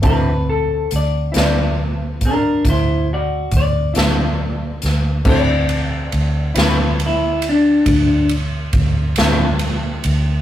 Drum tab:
CC |------------|x-----------|
RD |------------|-xxxxxxxxxxx|
HH |x-xx-xx-xx-x|------------|
SD |---o-----o-o|---o-----o--|
BD |o----oo-o---|o-----o-o---|